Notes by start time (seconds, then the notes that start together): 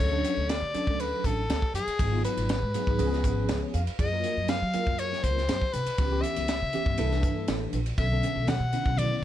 0.00 D2 D4 A4 C#5, kick, crash
0.11 F#3 C#4 D4 A4
0.24 hi-hat pedal, ride
0.37 D2
0.49 D5, snare, ride
0.62 D3
0.74 F#3 C#4 D4 A4, muted upright bass stroke, hi-hat pedal, ride
0.87 D2, kick
1.00 B4, ride
1.24 A1 A4, kick, hi-hat pedal, ride
1.49 D2, snare, ride
1.62 kick
1.74 F#2 G#4, hi-hat pedal, ride
1.87 muted upright bass stroke, ride
1.99 G#1 F#3 B3 D#4 G#4, kick, ride
2.11 F#3 B3 D#4 F4
2.24 B4, hi-hat pedal, ride
2.37 G#1, ride
2.49 snare, ride
2.62 G#2
2.74 F#3 B3 D#4 G#4, muted upright bass stroke, hi-hat pedal, ride
2.87 G#1, kick
2.98 C#2 F3 B3 C#4 G#4, ride
3.13 snare
3.24 G#1, kick, hi-hat pedal, ride
3.48 C#2 C#5, snare, ride
3.74 F2 F5, hi-hat pedal, ride
3.87 muted upright bass stroke, ride
3.99 F#2 F#3 A#3 F4 G#4 D#5, kick, ride
4.12 F#3 A#3 F4 A#4
4.24 hi-hat pedal, ride
4.37 F#2
4.48 F5, snare, ride
4.62 F#3
4.73 F#3 A#3 F4 A#4, muted upright bass stroke, hi-hat pedal, ride
4.87 F#2, kick
4.99 C#5, ride
5.13 snare
5.23 C#2 C5, kick, hi-hat pedal, ride
5.37 snare
5.48 F#2, snare, ride
5.62 kick
5.73 C3 B4, hi-hat pedal, ride
5.86 muted upright bass stroke, ride
5.98 C#2 E3 B3 C#4 G4, kick, ride
6.11 E3 B3 C#4 G4
6.22 E5, hi-hat pedal, ride
6.36 C#2, ride
6.48 snare, ride
6.62 C#3
6.73 E3 B3 C#4 G4, muted upright bass stroke, hi-hat pedal, ride
6.86 G2, kick
6.98 C2 E3 A#3 D4 A4, ride
7.11 snare
7.23 G2, kick, hi-hat pedal, ride
7.48 A1, snare, ride
7.73 A#1, hi-hat pedal, ride
7.86 ride
7.98 B1 D3 B3 C#4 A4 E5, kick, ride, muted conga
8.12 D3 B3 C#4 A4
8.23 hi-hat pedal, ride
8.35 B1
8.47 F#5, snare, ride, high conga
8.60 B2
8.72 D3 B3 C#4 E4, muted upright bass stroke, hi-hat pedal, ride
8.85 B1, kick
8.97 D5, ride, muted conga, high conga
9.17 D5